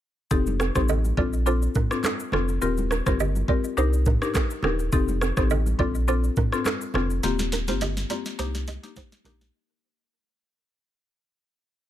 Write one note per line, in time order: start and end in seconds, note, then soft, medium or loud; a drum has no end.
0.31 0.70 F1 loud
0.31 0.72 C4 medium
0.31 0.72 D#4 medium
0.31 0.72 G4 medium
0.31 0.72 A4 loud
0.31 kick loud
0.31 low conga medium
0.31 shaker medium
0.47 high conga medium
0.47 shaker medium
0.60 0.69 C4 medium
0.60 0.69 A4 medium
0.60 cross-stick loud
0.60 shaker medium
0.75 1.12 A1 medium
0.75 0.97 C4 medium
0.75 0.97 D#4 medium
0.75 0.85 D#4 medium
0.75 0.97 G4 medium
0.75 0.97 A4 medium
0.75 0.84 C5 medium
0.75 kick medium
0.75 cross-stick medium
0.75 high conga medium
0.75 shaker medium
0.89 0.98 A4 medium
0.89 0.97 D#5 medium
0.89 low conga medium
0.89 shaker medium
1.05 high conga medium
1.05 shaker medium
1.17 1.68 A#1 loud
1.17 1.40 C4 medium
1.17 1.40 D4 medium
1.17 1.40 F4 medium
1.17 1.27 F4 medium
1.17 1.40 A4 medium
1.17 1.26 D5 medium
1.17 kick loud
1.17 high conga medium
1.33 shaker medium
1.46 1.69 C4 medium
1.46 1.69 D4 medium
1.46 1.69 F4 medium
1.46 1.56 F4 medium
1.46 1.69 A4 loud
1.46 1.55 C5 medium
1.46 shaker medium
1.62 shaker medium
1.75 1.85 D4 medium
1.75 1.84 A#4 medium
1.75 kick loud
1.75 mid tom loud
1.75 high conga medium
1.75 shaker medium
1.91 2.12 C4 medium
1.91 2.12 D4 medium
1.91 2.12 F4 medium
1.91 2.12 A4 medium
1.91 cross-stick loud
1.91 shaker soft
2.03 2.14 D4 medium
2.03 2.13 A4 medium
2.03 cross-stick loud
2.03 clap loud
2.03 high conga medium
2.03 shaker medium
2.20 shaker medium
2.32 2.58 F1 medium
2.32 2.55 C4 medium
2.32 2.43 C4 medium
2.32 2.55 D4 medium
2.32 2.55 F4 medium
2.32 2.55 A4 medium
2.32 2.42 A4 medium
2.32 cross-stick loud
2.32 high conga medium
2.32 low conga medium
2.48 shaker soft
2.62 3.01 D#1 loud
2.62 3.03 C4 medium
2.62 3.03 F4 medium
2.62 3.03 G4 medium
2.62 3.03 A#4 loud
2.62 low conga medium
2.62 shaker medium
2.78 high conga medium
2.78 shaker medium
2.91 3.00 D4 medium
2.91 2.99 A#4 medium
2.91 cross-stick medium
2.91 shaker medium
3.06 3.43 G1 loud
3.06 3.45 C4 medium
3.06 3.16 D#4 medium
3.06 3.45 F4 medium
3.06 3.45 G4 medium
3.06 3.45 A#4 medium
3.06 3.15 C5 medium
3.06 kick loud
3.06 cross-stick medium
3.06 high conga medium
3.06 shaker medium
3.20 3.29 G4 medium
3.20 3.28 D#5 medium
3.20 low conga medium
3.20 shaker medium
3.36 high conga medium
3.36 shaker medium
3.48 3.75 C4 medium
3.48 3.75 F4 medium
3.48 3.58 F4 medium
3.48 3.75 G4 medium
3.48 3.75 A#4 medium
3.48 3.57 D5 medium
3.48 kick loud
3.48 high conga medium
3.64 shaker medium
3.77 4.16 C2 loud
3.77 4.00 D4 loud
3.77 4.00 D#4 medium
3.77 3.87 D#4 medium
3.77 4.00 G4 medium
3.77 4.00 A#4 loud
3.77 3.86 C5 medium
3.77 shaker medium
3.93 shaker medium
4.06 4.16 D4 medium
4.06 4.15 A#4 medium
4.06 kick loud
4.06 mid tom loud
4.06 high conga medium
4.06 shaker medium
4.22 4.43 D4 medium
4.22 4.43 D#4 medium
4.22 4.43 G4 medium
4.22 4.43 A#4 medium
4.22 cross-stick medium
4.22 shaker medium
4.34 4.44 C4 medium
4.34 4.44 A4 medium
4.34 kick loud
4.34 cross-stick loud
4.34 clap loud
4.34 high conga medium
4.34 shaker medium
4.50 shaker medium
4.63 4.89 D#1 loud
4.63 4.73 C4 medium
4.63 4.86 D4 medium
4.63 4.86 D#4 medium
4.63 4.86 G4 medium
4.63 4.72 A4 medium
4.63 4.86 A#4 medium
4.63 cross-stick medium
4.63 high conga medium
4.63 low conga medium
4.79 shaker soft
4.92 5.32 F1 loud
4.92 5.33 C4 medium
4.92 5.34 D#4 medium
4.92 5.34 G4 medium
4.92 5.34 A4 loud
4.92 kick loud
4.92 low conga medium
4.92 shaker medium
5.08 high conga medium
5.08 shaker medium
5.21 5.31 C4 medium
5.21 5.30 A4 medium
5.21 cross-stick loud
5.21 shaker medium
5.37 5.74 A1 loud
5.37 5.58 C4 medium
5.37 5.58 D#4 medium
5.37 5.47 D#4 medium
5.37 5.58 G4 medium
5.37 5.58 A4 medium
5.37 5.46 C5 medium
5.37 kick loud
5.37 cross-stick medium
5.37 high conga medium
5.37 shaker medium
5.50 5.60 A4 medium
5.50 5.59 D#5 medium
5.50 low conga medium
5.50 shaker medium
5.66 high conga medium
5.66 shaker medium
5.79 6.29 A#1 loud
5.79 6.01 C4 medium
5.79 6.01 D4 medium
5.79 6.02 F4 medium
5.79 5.88 F4 medium
5.79 6.02 A4 medium
5.79 5.88 D5 medium
5.79 kick loud
5.79 high conga medium
5.95 shaker medium
6.08 6.30 C4 loud
6.08 6.30 D4 medium
6.08 6.30 F4 medium
6.08 6.17 F4 medium
6.08 6.31 A4 loud
6.08 6.17 C5 medium
6.08 shaker medium
6.24 shaker medium
6.36 6.46 D4 medium
6.36 6.45 A#4 medium
6.36 kick loud
6.36 mid tom loud
6.36 high conga medium
6.36 shaker medium
6.52 6.74 C4 medium
6.52 6.74 D4 medium
6.52 6.74 F4 medium
6.52 6.74 A4 medium
6.52 cross-stick medium
6.52 shaker soft
6.65 6.75 D4 medium
6.65 6.74 A4 medium
6.65 cross-stick loud
6.65 clap medium
6.65 high conga medium
6.65 shaker medium
6.81 shaker medium
6.94 7.20 F1 loud
6.94 7.17 C4 medium
6.94 7.04 C4 medium
6.94 7.17 D4 medium
6.94 7.17 F4 medium
6.94 7.17 A4 medium
6.94 7.03 A4 medium
6.94 cross-stick loud
6.94 high conga medium
6.94 low conga medium
7.10 shaker soft
7.23 7.70 D#1 loud
7.23 7.64 A#3 medium
7.23 7.64 C4 medium
7.23 7.64 F4 medium
7.23 7.65 G4 loud
7.23 snare medium
7.23 low conga medium
7.23 shaker medium
7.39 snare medium
7.39 high conga medium
7.39 shaker medium
7.52 7.62 D4 medium
7.52 7.61 A#4 medium
7.52 snare medium
7.52 shaker medium
7.68 8.05 G1 loud
7.68 8.07 A#3 medium
7.68 8.07 C4 medium
7.68 7.78 D#4 medium
7.68 8.07 F4 medium
7.68 8.07 G4 medium
7.68 7.77 C5 medium
7.68 snare medium
7.68 high conga medium
7.68 shaker medium
7.81 7.91 G4 medium
7.81 7.90 D#5 medium
7.81 snare medium
7.81 low conga medium
7.81 shaker medium
7.97 snare medium
7.97 high conga medium
7.97 shaker medium
8.10 8.37 A#3 medium
8.10 8.37 C4 medium
8.10 8.37 F4 medium
8.10 8.19 F4 medium
8.10 8.37 G4 medium
8.10 8.19 D5 medium
8.10 snare medium
8.10 high conga medium
8.10 shaker medium
8.26 snare medium
8.26 shaker medium
8.39 8.78 C2 loud
8.39 8.61 A#3 loud
8.39 8.61 D4 medium
8.39 8.61 D#4 medium
8.39 8.48 D#4 medium
8.39 8.61 G4 loud
8.39 8.47 C5 medium
8.39 snare medium
8.39 shaker medium
8.55 snare medium
8.55 shaker medium
8.67 8.77 G4 medium
8.67 8.76 D#5 medium
8.67 snare loud
8.67 high conga medium
8.67 shaker medium
8.83 9.04 A#3 medium
8.83 9.04 D4 medium
8.83 9.04 D#4 medium
8.83 9.05 G4 medium
8.83 snare medium
8.83 shaker soft
8.96 9.06 D#4 medium
8.96 9.05 C5 medium
8.96 kick loud
8.96 snare loud
8.96 high conga medium
8.96 shaker medium
9.12 snare medium
9.12 shaker medium
9.24 9.50 A#1 loud
9.24 9.48 A#3 medium
9.24 9.48 D4 medium
9.24 9.35 D4 medium
9.24 9.48 D#4 medium
9.24 9.48 G4 medium
9.24 9.34 A#4 medium
9.24 snare loud
9.24 high conga medium
9.24 low conga medium
9.24 shaker medium
9.41 snare loud